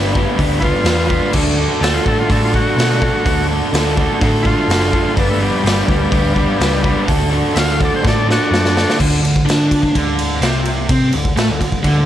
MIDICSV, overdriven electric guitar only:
0, 0, Header, 1, 2, 480
1, 0, Start_track
1, 0, Tempo, 476948
1, 1348, Time_signature, 4, 2, 24, 8
1, 12133, End_track
2, 0, Start_track
2, 0, Title_t, "Overdriven electric guitar"
2, 0, Program_c, 0, 29
2, 0, Note_on_c, 0, 55, 106
2, 0, Note_on_c, 0, 59, 106
2, 0, Note_on_c, 0, 62, 109
2, 0, Note_on_c, 0, 71, 116
2, 114, Note_off_c, 0, 71, 0
2, 126, Note_on_c, 0, 71, 71
2, 140, Note_off_c, 0, 59, 0
2, 153, Note_on_c, 0, 59, 61
2, 166, Note_off_c, 0, 62, 0
2, 170, Note_on_c, 0, 62, 48
2, 363, Note_off_c, 0, 55, 0
2, 375, Note_on_c, 0, 55, 73
2, 387, Note_off_c, 0, 59, 0
2, 388, Note_off_c, 0, 62, 0
2, 392, Note_on_c, 0, 62, 82
2, 399, Note_on_c, 0, 59, 81
2, 401, Note_off_c, 0, 71, 0
2, 413, Note_on_c, 0, 71, 84
2, 587, Note_off_c, 0, 71, 0
2, 599, Note_on_c, 0, 71, 99
2, 611, Note_off_c, 0, 59, 0
2, 623, Note_on_c, 0, 59, 85
2, 633, Note_off_c, 0, 62, 0
2, 634, Note_off_c, 0, 55, 0
2, 637, Note_on_c, 0, 62, 85
2, 646, Note_on_c, 0, 55, 73
2, 837, Note_off_c, 0, 55, 0
2, 849, Note_on_c, 0, 55, 74
2, 858, Note_off_c, 0, 62, 0
2, 862, Note_off_c, 0, 59, 0
2, 862, Note_on_c, 0, 62, 86
2, 874, Note_on_c, 0, 59, 88
2, 877, Note_off_c, 0, 71, 0
2, 889, Note_on_c, 0, 71, 78
2, 1079, Note_off_c, 0, 71, 0
2, 1091, Note_on_c, 0, 71, 89
2, 1097, Note_off_c, 0, 59, 0
2, 1109, Note_on_c, 0, 59, 71
2, 1130, Note_off_c, 0, 62, 0
2, 1135, Note_on_c, 0, 62, 71
2, 1324, Note_off_c, 0, 55, 0
2, 1325, Note_off_c, 0, 71, 0
2, 1331, Note_on_c, 0, 50, 87
2, 1334, Note_off_c, 0, 59, 0
2, 1341, Note_off_c, 0, 62, 0
2, 1345, Note_on_c, 0, 62, 102
2, 1355, Note_on_c, 0, 66, 104
2, 1366, Note_on_c, 0, 69, 90
2, 1566, Note_off_c, 0, 69, 0
2, 1570, Note_on_c, 0, 69, 82
2, 1592, Note_off_c, 0, 66, 0
2, 1596, Note_on_c, 0, 66, 68
2, 1609, Note_off_c, 0, 62, 0
2, 1613, Note_on_c, 0, 62, 63
2, 1819, Note_off_c, 0, 50, 0
2, 1823, Note_on_c, 0, 50, 93
2, 1835, Note_off_c, 0, 62, 0
2, 1839, Note_on_c, 0, 62, 103
2, 1850, Note_off_c, 0, 66, 0
2, 1854, Note_on_c, 0, 66, 100
2, 1863, Note_off_c, 0, 69, 0
2, 1867, Note_on_c, 0, 69, 105
2, 2058, Note_off_c, 0, 69, 0
2, 2062, Note_on_c, 0, 69, 74
2, 2084, Note_off_c, 0, 66, 0
2, 2088, Note_on_c, 0, 66, 63
2, 2104, Note_off_c, 0, 62, 0
2, 2108, Note_on_c, 0, 62, 60
2, 2300, Note_off_c, 0, 50, 0
2, 2304, Note_on_c, 0, 50, 74
2, 2311, Note_off_c, 0, 62, 0
2, 2315, Note_on_c, 0, 62, 78
2, 2319, Note_off_c, 0, 66, 0
2, 2331, Note_on_c, 0, 66, 76
2, 2334, Note_off_c, 0, 69, 0
2, 2346, Note_on_c, 0, 69, 73
2, 2534, Note_off_c, 0, 69, 0
2, 2546, Note_on_c, 0, 69, 98
2, 2550, Note_off_c, 0, 66, 0
2, 2562, Note_on_c, 0, 66, 87
2, 2570, Note_off_c, 0, 62, 0
2, 2574, Note_on_c, 0, 62, 89
2, 2575, Note_off_c, 0, 50, 0
2, 2587, Note_on_c, 0, 50, 73
2, 2773, Note_off_c, 0, 50, 0
2, 2785, Note_on_c, 0, 50, 77
2, 2799, Note_off_c, 0, 62, 0
2, 2802, Note_off_c, 0, 66, 0
2, 2803, Note_on_c, 0, 62, 76
2, 2814, Note_on_c, 0, 66, 78
2, 2819, Note_off_c, 0, 69, 0
2, 2831, Note_on_c, 0, 69, 78
2, 3011, Note_off_c, 0, 69, 0
2, 3023, Note_on_c, 0, 69, 92
2, 3033, Note_off_c, 0, 66, 0
2, 3045, Note_on_c, 0, 66, 81
2, 3059, Note_off_c, 0, 62, 0
2, 3063, Note_on_c, 0, 62, 69
2, 3248, Note_off_c, 0, 50, 0
2, 3260, Note_on_c, 0, 50, 104
2, 3270, Note_off_c, 0, 62, 0
2, 3274, Note_on_c, 0, 62, 101
2, 3275, Note_off_c, 0, 66, 0
2, 3285, Note_off_c, 0, 69, 0
2, 3287, Note_on_c, 0, 66, 110
2, 3297, Note_on_c, 0, 69, 98
2, 3496, Note_off_c, 0, 69, 0
2, 3508, Note_on_c, 0, 69, 81
2, 3516, Note_off_c, 0, 66, 0
2, 3529, Note_on_c, 0, 66, 71
2, 3547, Note_off_c, 0, 62, 0
2, 3551, Note_on_c, 0, 62, 69
2, 3737, Note_off_c, 0, 50, 0
2, 3749, Note_on_c, 0, 50, 103
2, 3759, Note_off_c, 0, 62, 0
2, 3763, Note_on_c, 0, 62, 112
2, 3766, Note_off_c, 0, 66, 0
2, 3772, Note_off_c, 0, 69, 0
2, 3778, Note_on_c, 0, 66, 109
2, 3785, Note_on_c, 0, 69, 105
2, 3975, Note_off_c, 0, 69, 0
2, 3987, Note_on_c, 0, 69, 69
2, 3996, Note_off_c, 0, 66, 0
2, 4008, Note_on_c, 0, 66, 58
2, 4025, Note_off_c, 0, 62, 0
2, 4029, Note_on_c, 0, 62, 54
2, 4217, Note_off_c, 0, 50, 0
2, 4229, Note_on_c, 0, 50, 79
2, 4237, Note_off_c, 0, 62, 0
2, 4240, Note_off_c, 0, 66, 0
2, 4241, Note_on_c, 0, 62, 87
2, 4252, Note_on_c, 0, 66, 79
2, 4258, Note_off_c, 0, 69, 0
2, 4270, Note_on_c, 0, 69, 80
2, 4464, Note_off_c, 0, 69, 0
2, 4476, Note_on_c, 0, 69, 100
2, 4482, Note_off_c, 0, 66, 0
2, 4494, Note_on_c, 0, 66, 82
2, 4499, Note_off_c, 0, 62, 0
2, 4503, Note_on_c, 0, 62, 89
2, 4511, Note_off_c, 0, 50, 0
2, 4523, Note_on_c, 0, 50, 78
2, 4692, Note_off_c, 0, 50, 0
2, 4704, Note_on_c, 0, 50, 82
2, 4719, Note_off_c, 0, 62, 0
2, 4719, Note_off_c, 0, 66, 0
2, 4723, Note_on_c, 0, 62, 79
2, 4731, Note_on_c, 0, 66, 90
2, 4737, Note_off_c, 0, 69, 0
2, 4749, Note_on_c, 0, 69, 84
2, 4939, Note_off_c, 0, 69, 0
2, 4951, Note_on_c, 0, 69, 86
2, 4962, Note_off_c, 0, 66, 0
2, 4974, Note_on_c, 0, 66, 71
2, 4983, Note_off_c, 0, 62, 0
2, 4988, Note_on_c, 0, 62, 63
2, 5168, Note_off_c, 0, 50, 0
2, 5172, Note_on_c, 0, 55, 88
2, 5181, Note_off_c, 0, 69, 0
2, 5189, Note_off_c, 0, 62, 0
2, 5192, Note_off_c, 0, 66, 0
2, 5193, Note_on_c, 0, 62, 105
2, 5205, Note_on_c, 0, 59, 96
2, 5220, Note_on_c, 0, 71, 104
2, 5422, Note_off_c, 0, 71, 0
2, 5434, Note_on_c, 0, 71, 77
2, 5443, Note_off_c, 0, 59, 0
2, 5455, Note_on_c, 0, 59, 70
2, 5466, Note_off_c, 0, 62, 0
2, 5470, Note_on_c, 0, 62, 64
2, 5651, Note_off_c, 0, 55, 0
2, 5663, Note_on_c, 0, 55, 101
2, 5671, Note_off_c, 0, 62, 0
2, 5675, Note_on_c, 0, 62, 101
2, 5681, Note_off_c, 0, 59, 0
2, 5690, Note_off_c, 0, 71, 0
2, 5693, Note_on_c, 0, 59, 114
2, 5703, Note_on_c, 0, 71, 115
2, 5885, Note_off_c, 0, 71, 0
2, 5897, Note_on_c, 0, 71, 62
2, 5912, Note_off_c, 0, 59, 0
2, 5924, Note_on_c, 0, 59, 68
2, 5937, Note_off_c, 0, 62, 0
2, 5941, Note_on_c, 0, 62, 56
2, 6127, Note_off_c, 0, 55, 0
2, 6139, Note_on_c, 0, 55, 79
2, 6157, Note_off_c, 0, 62, 0
2, 6161, Note_off_c, 0, 59, 0
2, 6161, Note_on_c, 0, 62, 77
2, 6173, Note_on_c, 0, 59, 88
2, 6177, Note_off_c, 0, 71, 0
2, 6189, Note_on_c, 0, 71, 82
2, 6369, Note_off_c, 0, 71, 0
2, 6381, Note_on_c, 0, 71, 100
2, 6384, Note_off_c, 0, 59, 0
2, 6396, Note_on_c, 0, 59, 92
2, 6407, Note_off_c, 0, 62, 0
2, 6411, Note_on_c, 0, 62, 88
2, 6412, Note_off_c, 0, 55, 0
2, 6424, Note_on_c, 0, 55, 78
2, 6616, Note_off_c, 0, 55, 0
2, 6628, Note_on_c, 0, 55, 82
2, 6642, Note_off_c, 0, 62, 0
2, 6644, Note_off_c, 0, 59, 0
2, 6646, Note_on_c, 0, 62, 84
2, 6656, Note_on_c, 0, 59, 88
2, 6658, Note_off_c, 0, 71, 0
2, 6671, Note_on_c, 0, 71, 82
2, 6855, Note_off_c, 0, 71, 0
2, 6867, Note_on_c, 0, 71, 89
2, 6876, Note_off_c, 0, 59, 0
2, 6888, Note_on_c, 0, 59, 73
2, 6904, Note_off_c, 0, 62, 0
2, 6908, Note_on_c, 0, 62, 74
2, 7094, Note_off_c, 0, 55, 0
2, 7098, Note_on_c, 0, 50, 100
2, 7102, Note_off_c, 0, 71, 0
2, 7110, Note_off_c, 0, 62, 0
2, 7113, Note_off_c, 0, 59, 0
2, 7114, Note_on_c, 0, 62, 91
2, 7125, Note_on_c, 0, 66, 95
2, 7135, Note_on_c, 0, 69, 123
2, 7336, Note_off_c, 0, 69, 0
2, 7349, Note_on_c, 0, 69, 73
2, 7354, Note_off_c, 0, 66, 0
2, 7366, Note_on_c, 0, 66, 76
2, 7377, Note_off_c, 0, 62, 0
2, 7389, Note_on_c, 0, 62, 70
2, 7570, Note_off_c, 0, 50, 0
2, 7582, Note_on_c, 0, 50, 101
2, 7591, Note_off_c, 0, 62, 0
2, 7599, Note_off_c, 0, 66, 0
2, 7603, Note_on_c, 0, 62, 103
2, 7611, Note_off_c, 0, 69, 0
2, 7611, Note_on_c, 0, 66, 111
2, 7623, Note_on_c, 0, 69, 121
2, 7822, Note_off_c, 0, 69, 0
2, 7834, Note_on_c, 0, 69, 61
2, 7846, Note_off_c, 0, 66, 0
2, 7858, Note_on_c, 0, 66, 63
2, 7864, Note_off_c, 0, 62, 0
2, 7876, Note_on_c, 0, 62, 62
2, 8061, Note_off_c, 0, 50, 0
2, 8073, Note_on_c, 0, 50, 77
2, 8074, Note_off_c, 0, 62, 0
2, 8086, Note_on_c, 0, 62, 90
2, 8087, Note_off_c, 0, 66, 0
2, 8099, Note_on_c, 0, 66, 83
2, 8102, Note_off_c, 0, 69, 0
2, 8114, Note_on_c, 0, 69, 87
2, 8285, Note_off_c, 0, 69, 0
2, 8297, Note_on_c, 0, 69, 98
2, 8303, Note_off_c, 0, 66, 0
2, 8315, Note_on_c, 0, 66, 81
2, 8323, Note_off_c, 0, 62, 0
2, 8330, Note_off_c, 0, 50, 0
2, 8335, Note_on_c, 0, 62, 88
2, 8342, Note_on_c, 0, 50, 73
2, 8525, Note_off_c, 0, 50, 0
2, 8537, Note_on_c, 0, 50, 76
2, 8539, Note_off_c, 0, 62, 0
2, 8551, Note_on_c, 0, 62, 76
2, 8552, Note_off_c, 0, 66, 0
2, 8564, Note_on_c, 0, 66, 84
2, 8572, Note_off_c, 0, 69, 0
2, 8584, Note_on_c, 0, 69, 94
2, 8777, Note_off_c, 0, 69, 0
2, 8789, Note_on_c, 0, 69, 89
2, 8796, Note_off_c, 0, 66, 0
2, 8808, Note_on_c, 0, 66, 77
2, 8814, Note_off_c, 0, 62, 0
2, 8826, Note_on_c, 0, 62, 73
2, 9018, Note_off_c, 0, 50, 0
2, 9025, Note_off_c, 0, 69, 0
2, 9033, Note_on_c, 0, 50, 107
2, 9034, Note_off_c, 0, 66, 0
2, 9043, Note_off_c, 0, 62, 0
2, 9270, Note_off_c, 0, 50, 0
2, 9282, Note_on_c, 0, 50, 74
2, 9477, Note_off_c, 0, 50, 0
2, 9524, Note_on_c, 0, 62, 117
2, 9997, Note_off_c, 0, 62, 0
2, 10022, Note_on_c, 0, 50, 106
2, 10484, Note_off_c, 0, 50, 0
2, 10491, Note_on_c, 0, 48, 111
2, 10956, Note_off_c, 0, 48, 0
2, 10968, Note_on_c, 0, 60, 101
2, 11195, Note_off_c, 0, 60, 0
2, 11202, Note_on_c, 0, 50, 72
2, 11390, Note_off_c, 0, 50, 0
2, 11441, Note_on_c, 0, 57, 113
2, 11550, Note_off_c, 0, 57, 0
2, 11561, Note_on_c, 0, 50, 81
2, 11673, Note_off_c, 0, 50, 0
2, 11685, Note_on_c, 0, 50, 66
2, 11868, Note_off_c, 0, 50, 0
2, 11909, Note_on_c, 0, 50, 115
2, 12133, Note_off_c, 0, 50, 0
2, 12133, End_track
0, 0, End_of_file